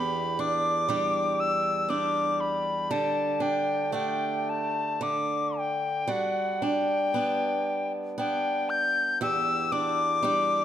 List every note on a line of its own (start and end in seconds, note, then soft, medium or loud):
0.00 2.90 E2 medium
0.00 0.39 D4 soft
0.00 0.89 G4 soft
0.00 0.42 B5 medium
0.39 0.89 D4 soft
0.39 1.42 D6 medium
0.89 1.88 G3 soft
0.89 1.89 D4 soft
0.89 1.90 G4 soft
1.40 1.91 E6 medium
1.89 3.92 G3 soft
1.89 3.40 D4 soft
1.89 2.91 G4 soft
1.89 2.42 D6 medium
2.40 2.92 B5 medium
2.91 5.00 D3 soft
2.91 3.93 G4 soft
2.91 3.43 A5 medium
3.40 3.93 D4 soft
3.40 3.94 G5 medium
3.92 5.12 A3 soft
3.92 6.62 D4 soft
3.92 5.13 G4 soft
3.92 4.51 G5 medium
4.49 5.04 A5 medium
5.01 6.07 D3 soft
5.01 5.59 D6 medium
5.58 6.13 G5 soft
6.08 9.58 G3 soft
6.08 7.14 F#4 soft
6.12 6.65 F#5 medium
6.62 7.15 D4 soft
6.62 7.92 G5 medium
7.14 8.17 B3 soft
7.14 8.19 D4 soft
8.18 10.22 B3 soft
8.18 9.72 D4 soft
8.18 8.71 G5 medium
8.70 9.21 G6 medium
9.21 10.65 E2 medium
9.21 10.24 G4 soft
9.21 9.73 E6 medium
9.72 10.23 D4 soft
9.72 10.65 D6 medium
10.23 10.65 G3 soft
10.23 10.65 D4 soft
10.23 10.65 G4 soft